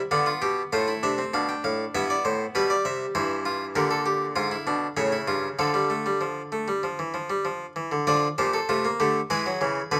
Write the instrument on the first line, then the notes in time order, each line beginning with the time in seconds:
harpsichord
0.11 D3 B3 D4 F5
0.26 F4
0.42 B2 G4 G5
0.73 A2 A3 F4 C5
0.88 E4
1.03 C3 D4 E5
1.18 C4
1.33 B2 D4 F5
1.49 G5
1.64 A2 F5
1.95 G2 B3 E4 E5
2.10 D5
2.25 A2 C5
2.55 B2 G3 G4 B4
2.70 D5
2.85 C3 E5
3.15 G2 E3 E4 C5
3.45 F4
3.75 A#2 D3 G4 A#4
3.91 A4
4.06 G4
4.36 G#2 F4 F5
4.51 E4
4.67 B2 D4
4.97 A2 C#3 C#4 E5
5.12 E4
5.28 G2 F4
5.59 D3 F3 A4 F5
5.74 G3
5.90 A3
6.06 G3
6.21 F3
6.52 A3
6.68 G3
6.83 F3
6.99 E3
7.14 F3
7.30 G3
7.45 F3
7.76 E3
7.92 D3
8.07 D3 F3 F4 D5
8.38 A#2 F3 G4 C5
8.54 A4
8.69 C3 A3 F4
8.85 A#3
9.00 D3 A3 G4
9.30 E3 G#3 G#4 B4
9.46 F#3
9.61 C#3 E3
9.91 B2 D3 B4